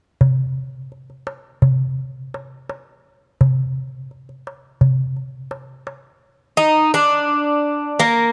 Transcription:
0.21 darbuka dum
0.92 darbuka ka
1.10 darbuka ka
1.27 darbuka tek
1.62 darbuka dum
2.34 darbuka tek
2.69 darbuka tek
3.41 darbuka dum
4.11 darbuka ka
4.29 darbuka ka
4.47 darbuka tek
4.81 darbuka dum
5.16 darbuka ka
5.51 darbuka tek
5.87 darbuka tek
6.57 D#4
6.94 D4
7.99 A#3

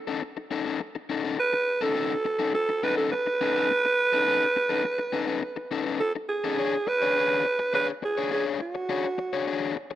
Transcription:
0.07 C#4 D#4 A4
0.22 muted overdriven electric guitar stroke
0.37 muted overdriven electric guitar stroke
0.51 C#4 D#4 A4
0.66 C#4 D#4 A4
0.80 muted overdriven electric guitar stroke
0.95 muted overdriven electric guitar stroke
1.09 C#4 D#4 A4
1.24 C#4 D#4 A4
1.38 B4, muted overdriven electric guitar stroke
1.53 muted overdriven electric guitar stroke
1.81 C#4 D#4 A4
1.95 C#4 D#4 A4
2.25 muted overdriven electric guitar stroke
2.39 C#4 D#4 A4
2.54 A4, muted overdriven electric guitar stroke
2.69 muted overdriven electric guitar stroke
2.83 C#4 D#4 A4 B4
2.97 C#4 D#4 A4
3.12 B4, muted overdriven electric guitar stroke
3.26 muted overdriven electric guitar stroke
3.41 C#4 D#4 A4
3.56 C#4 D#4 A4
3.71 muted overdriven electric guitar stroke
3.85 muted overdriven electric guitar stroke
4.13 C#4 D#4 A4
4.28 C#4 D#4 A4
4.56 muted overdriven electric guitar stroke
4.69 C#4 D#4 A4
4.84 muted overdriven electric guitar stroke
4.99 muted overdriven electric guitar stroke
5.13 C#4 D#4 A4
5.27 C#4 D#4 A4
5.42 muted overdriven electric guitar stroke
5.56 muted overdriven electric guitar stroke
5.71 C#4 D#4 A4
5.86 C#4 D#4 A4
6.00 A4, muted overdriven electric guitar stroke
6.16 muted overdriven electric guitar stroke
6.29 G#4
6.44 C#4 D#4 A4
6.58 D4 G#4 C#5
6.87 B4, muted overdriven electric guitar stroke
7.02 D4 G#4 C#5
7.16 D4 G#4 C#5
7.45 muted overdriven electric guitar stroke
7.59 muted overdriven electric guitar stroke
7.74 D4 G#4 B4 C#5
8.02 G#4, muted overdriven electric guitar stroke
8.17 D4 G#4 C#5
8.31 D4 G#4 C#5
8.60 F#4, muted overdriven electric guitar stroke
8.75 muted overdriven electric guitar stroke
8.89 D4 G#4 C#5
9.18 muted overdriven electric guitar stroke
9.33 D4 G#4 C#5
9.47 D4 G#4 C#5
9.76 muted overdriven electric guitar stroke
9.91 muted overdriven electric guitar stroke

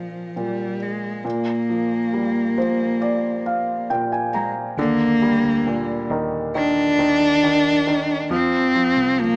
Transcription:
Already playing: A#2 F3
0.36 A#2 G3
0.83 G#3
1.25 A#2 A#3
1.69 F3
2.13 G3
2.58 F3 C5
3.02 D5
3.46 F5
3.90 A#2 G5
4.12 G#5
4.34 G#3 A#5
4.77 D#2 D3 A#3
5.22 G3
5.44 D2
5.67 A#2
6.10 D#2 D#3
6.55 D#3 D4
6.98 D#2 D#3
7.43 D#3
7.87 D#3
8.30 F2 F3 C4
8.75 F3
8.96 C2
9.20 F3 A#3

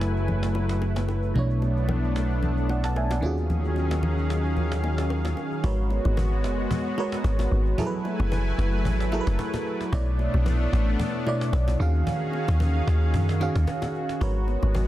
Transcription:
Already playing: F#1 F#3 A3 E4 G#4 A4 B4 G#5
0.01 cajon slap
0.16 cajon slap
0.28 cajon slap, low conga
0.43 cajon slap
0.55 cajon slap, low bongo
0.69 cajon slap
0.82 cajon slap, high bongo
0.96 cajon slap, low bongo
1.09 cajon slap, high bongo
1.23 cajon slap
1.34 B1 B2 A3 B3 D4 E4, cajon slap, low conga
1.39 C#5
1.50 cajon slap
1.62 cajon slap, low bongo
1.77 cajon slap
1.89 cajon slap, high bongo, low conga
2.03 cajon slap
2.16 cajon slap
2.31 cajon slap
2.42 cajon slap, low conga
2.57 cajon slap
2.69 D5 F#5, cajon slap, low bongo
2.84 F#5 A5, cajon slap
2.96 E5 G#5, cajon slap, high bongo
3.11 D5 F#5, cajon slap, low bongo
3.21 D#2 D#3 F#3 C#4 F4 F#4 G#4 F5, cajon slap, high bongo
3.26 G#4
3.37 cajon slap
3.50 cajon slap, low conga
3.64 cajon slap
3.76 cajon slap, low bongo
3.91 cajon slap, low bongo
4.03 high bongo, low conga
4.18 cajon slap
4.30 cajon slap
4.45 cajon slap
4.57 cajon slap, low conga
4.72 cajon slap
4.84 cajon slap, low bongo
4.98 cajon slap, high bongo
5.10 cajon slap, high bongo
5.25 cajon slap, low bongo
5.37 cajon slap, high bongo
5.51 cajon slap
5.64 G#1 G#3 B3 F#4 A#4 B4 C#5, cajon bass, low conga
5.78 cajon slap
5.91 cajon slap, low bongo
6.05 G#1, cajon slap, low bongo
6.17 cajon bass, high bongo, low conga
6.32 cajon slap
6.44 F#1, cajon slap
6.59 cajon slap
6.71 cajon bass, low conga
6.85 cajon slap
6.98 G#3 F#4 A#4 B4 C#5, cajon slap, low bongo
7.12 cajon slap
7.24 G#1, cajon bass, cajon slap, high bongo
7.39 cajon bass, cajon slap, low bongo
7.52 G#1, cajon slap
7.66 cajon slap
7.78 F#3 A3 E4 G#4 A4 A#4 B4 G#5, cajon bass, low conga
7.87 B4
7.93 cajon slap
8.05 cajon slap, low bongo
8.20 F#1, cajon slap, low bongo
8.32 cajon bass, high bongo, low conga
8.47 cajon slap
8.58 F#1, cajon slap
8.74 cajon slap
8.85 G#1, cajon bass, low conga
9.00 cajon slap
9.12 F#3 E4 G#4 A4 A#4, cajon slap, low bongo
9.21 B4
9.27 F#1, cajon slap
9.39 cajon bass, cajon slap, high bongo
9.54 cajon bass, cajon slap, low bongo
9.66 cajon slap
9.81 cajon slap
9.92 B1 B2 A3 B3 D4 E4 C#5 D5, cajon bass, low conga
10.07 cajon slap
10.19 cajon slap, low bongo
10.34 B1, cajon slap, low bongo
10.46 cajon bass, high bongo, low conga
10.61 cajon slap
10.73 A1, cajon slap
10.88 cajon slap
10.99 cajon bass, low conga
11.14 cajon slap
11.26 B2 A3 E4 C#5 D5, cajon slap, low bongo
11.41 cajon slap
11.53 B1, cajon bass, cajon slap, high bongo
11.68 cajon bass, cajon slap, low bongo
11.79 D#2 D#3 C#4 F#4 G#4 F5
11.94 cajon slap
12.07 cajon bass, low conga
12.22 cajon slap
12.33 cajon slap, low bongo
12.48 D#2, cajon slap, low bongo
12.60 cajon bass, high bongo, low conga
12.75 cajon slap
12.87 D#2, cajon slap
13.03 cajon slap
13.14 F#2, cajon bass, low conga
13.29 cajon slap
13.40 D#3 C#4 F#4 G#4 F5, cajon slap, low bongo
13.55 D#2, cajon slap
13.67 cajon bass, cajon slap, high bongo
13.82 cajon bass, cajon slap, low bongo
13.95 cajon slap
14.09 cajon slap
14.21 G#1 G#3 B3 F#4 A#4 B4 C#5, cajon bass, low conga
14.36 cajon slap
14.48 cajon slap, low bongo
14.63 G#1, cajon slap, low bongo
14.75 cajon bass, high bongo, low conga

